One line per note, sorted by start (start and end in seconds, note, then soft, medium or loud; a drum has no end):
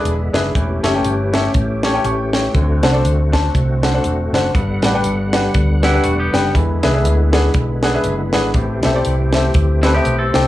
0.00 0.51 D3 medium
0.00 0.53 G#3 medium
0.00 0.51 B3 medium
0.00 0.12 D4 medium
0.00 0.53 E4 medium
0.00 2.50 E4 medium
0.00 0.12 G#4 medium
0.00 0.53 G#4 medium
0.00 0.13 B4 medium
0.00 0.53 B4 medium
0.00 0.13 D5 medium
0.00 0.51 D5 medium
0.05 0.29 E1 medium
0.05 closed hi-hat medium
0.33 0.52 F#1 medium
0.33 0.49 D4 medium
0.33 0.49 G#4 medium
0.33 0.50 B4 medium
0.33 0.50 E5 medium
0.33 snare medium
0.33 closed hi-hat medium
0.54 0.80 E1 loud
0.54 1.30 E3 medium
0.54 2.53 E3 medium
0.54 4.50 A3 medium
0.54 2.53 C#4 medium
0.54 2.52 G4 medium
0.54 2.53 G4 medium
0.54 4.50 A4 medium
0.54 2.52 C#5 medium
0.54 kick loud
0.54 closed hi-hat medium
0.83 1.02 F#1 medium
0.83 0.91 C#4 medium
0.83 0.92 G4 medium
0.83 0.91 A4 medium
0.83 0.92 E5 medium
0.83 snare loud
0.83 closed hi-hat medium
0.94 1.12 C#4 medium
0.94 1.12 G4 medium
0.94 1.12 A4 medium
0.94 1.12 G5 medium
1.05 1.47 G1 medium
1.05 closed hi-hat medium
1.33 1.49 C#4 medium
1.33 1.49 G4 medium
1.33 1.49 A4 medium
1.33 1.50 E5 medium
1.33 snare loud
1.33 closed hi-hat medium
1.54 1.97 A1 medium
1.54 kick loud
1.54 closed hi-hat medium
1.83 1.91 C#4 medium
1.83 1.91 G4 medium
1.83 1.92 A4 medium
1.83 1.92 C#5 medium
1.83 snare loud
1.83 closed hi-hat medium
1.93 2.11 C#4 medium
1.93 2.12 G4 medium
1.93 2.12 A4 medium
1.93 2.04 G5 medium
2.04 2.47 A1 medium
2.04 2.32 G5 medium
2.04 2.32 C#6 medium
2.04 closed hi-hat medium
2.33 2.81 C#5 medium
2.33 2.81 G5 medium
2.33 snare medium
2.33 closed hi-hat medium
2.53 2.79 D2 medium
2.53 8.50 D3 medium
2.53 3.30 D3 medium
2.53 4.52 C4 medium
2.53 8.50 D4 medium
2.53 4.52 F#4 medium
2.53 4.52 C5 medium
2.53 kick loud
2.53 closed hi-hat medium
2.83 3.01 C2 medium
2.83 2.91 D4 medium
2.83 2.91 A4 medium
2.83 2.91 C5 medium
2.83 2.92 F#5 medium
2.83 snare loud
2.83 closed hi-hat medium
2.93 3.11 D4 medium
2.93 3.11 A4 medium
2.93 3.11 C5 medium
2.93 3.11 D5 medium
3.04 3.47 D2 medium
3.04 closed hi-hat loud
3.32 3.49 D4 medium
3.32 3.49 A4 medium
3.32 3.49 C5 medium
3.32 3.49 A5 medium
3.32 kick medium
3.32 snare loud
3.32 closed hi-hat medium
3.55 3.97 C2 medium
3.55 kick loud
3.55 closed hi-hat medium
3.82 3.91 D4 medium
3.82 3.91 A4 medium
3.82 3.91 C5 medium
3.82 3.91 F#5 medium
3.82 snare loud
3.82 closed hi-hat medium
3.94 4.11 D4 medium
3.94 4.12 A4 medium
3.94 4.12 C5 medium
3.94 4.12 F#5 medium
4.04 4.29 E1 medium
4.04 closed hi-hat medium
4.32 4.51 F#1 medium
4.32 4.49 D4 medium
4.32 4.49 A4 medium
4.32 4.50 C5 medium
4.32 4.50 F#5 medium
4.32 snare medium
4.32 closed hi-hat medium
4.53 4.79 G1 loud
4.53 5.30 G2 medium
4.53 6.52 G3 medium
4.53 6.52 B3 medium
4.53 6.52 G4 medium
4.53 8.51 B4 medium
4.53 6.52 F#5 medium
4.53 kick loud
4.53 closed hi-hat medium
4.82 5.01 A1 medium
4.82 4.92 D4 medium
4.82 4.92 G4 medium
4.82 4.92 B4 medium
4.82 4.92 F#5 medium
4.82 snare loud
4.82 closed hi-hat medium
4.94 5.11 D4 medium
4.94 5.11 G4 medium
4.94 5.12 B4 medium
4.94 5.12 G5 medium
5.04 5.47 G1 medium
5.04 closed hi-hat medium
5.33 5.49 D4 medium
5.33 5.49 G4 medium
5.33 5.49 B4 medium
5.33 5.49 F#5 medium
5.33 snare loud
5.33 closed hi-hat medium
5.54 5.97 D2 medium
5.54 kick loud
5.54 closed hi-hat medium
5.82 6.04 G3 medium
5.82 5.91 D4 medium
5.82 6.04 E4 medium
5.82 5.91 G4 medium
5.82 5.91 B4 medium
5.82 5.91 F#5 medium
5.82 snare loud
5.82 closed hi-hat medium
5.93 6.11 D4 medium
5.93 6.11 G4 medium
5.93 6.12 B4 medium
5.93 6.12 F#5 medium
6.04 6.29 E1 medium
6.04 6.18 A3 medium
6.04 6.18 F#4 medium
6.04 closed hi-hat medium
6.19 6.53 B3 medium
6.19 6.53 G4 medium
6.33 6.51 F#1 medium
6.33 6.49 D4 medium
6.33 6.49 G4 medium
6.33 6.49 B4 medium
6.33 6.50 G5 medium
6.33 snare medium
6.33 closed hi-hat medium
6.54 6.79 E2 medium
6.54 7.29 E3 medium
6.54 8.53 G#3 medium
6.54 8.53 B3 medium
6.54 10.47 E4 medium
6.54 8.54 E4 medium
6.54 8.53 G#4 medium
6.54 kick loud
6.54 closed hi-hat medium
6.83 7.05 C2 medium
6.83 6.91 D4 medium
6.83 6.91 G#4 medium
6.83 6.91 B4 medium
6.83 6.92 E5 medium
6.83 snare loud
6.83 closed hi-hat medium
6.93 7.11 D4 medium
6.93 7.11 G#4 medium
6.93 7.11 B4 medium
6.93 7.12 E5 medium
7.05 7.47 D2 medium
7.05 closed hi-hat loud
7.33 7.49 D4 medium
7.33 7.49 G#4 medium
7.33 7.49 B4 medium
7.33 7.49 F#5 medium
7.33 snare loud
7.33 closed hi-hat medium
7.54 7.97 B1 medium
7.54 kick loud
7.54 closed hi-hat medium
7.83 7.91 D4 medium
7.83 7.91 G#4 medium
7.83 7.91 B4 medium
7.83 7.92 F#5 medium
7.83 snare loud
7.83 closed hi-hat medium
7.94 8.12 D4 medium
7.94 8.12 G#4 medium
7.94 8.12 B4 medium
7.94 8.12 E5 medium
8.04 8.34 F#1 loud
8.04 closed hi-hat medium
8.33 8.52 G#1 medium
8.33 8.49 D4 medium
8.33 8.49 G#4 medium
8.33 8.50 B4 medium
8.33 8.50 F#5 medium
8.33 snare medium
8.33 closed hi-hat medium
8.54 8.79 A1 medium
8.54 9.30 A2 medium
8.54 10.47 E3 medium
8.54 10.47 A3 medium
8.54 10.47 C4 medium
8.54 10.47 G4 medium
8.54 10.47 A4 medium
8.54 10.47 C5 medium
8.54 kick loud
8.54 closed hi-hat medium
8.83 9.02 B1 medium
8.83 8.92 C4 medium
8.83 8.92 G4 medium
8.83 8.92 A4 medium
8.83 8.92 E5 medium
8.83 snare loud
8.83 closed hi-hat medium
8.94 9.12 C4 medium
8.94 9.12 G4 medium
8.94 9.12 A4 medium
8.94 9.13 D5 medium
9.05 9.48 C2 medium
9.05 closed hi-hat medium
9.33 9.50 C4 medium
9.33 9.50 G4 medium
9.33 9.50 A4 medium
9.33 9.50 E5 medium
9.33 snare loud
9.33 closed hi-hat medium
9.54 9.98 D2 loud
9.54 kick loud
9.54 closed hi-hat medium
9.83 9.94 G3 medium
9.83 9.92 C4 medium
9.83 9.93 E4 medium
9.83 9.92 G4 medium
9.83 9.92 A4 medium
9.83 9.92 B4 medium
9.83 snare loud
9.83 closed hi-hat medium
9.94 10.18 B3 medium
9.94 10.12 C4 medium
9.94 10.18 G4 medium
9.94 10.13 G4 medium
9.94 10.13 A4 medium
9.94 10.13 E5 medium
10.05 10.30 B1 medium
10.05 closed hi-hat medium
10.19 10.47 C4 medium
10.19 10.47 A4 medium
10.34 10.47 C2 medium
10.34 10.47 C4 medium
10.34 10.47 G4 medium
10.34 10.47 A4 medium
10.34 10.47 G5 medium
10.34 snare medium
10.34 closed hi-hat medium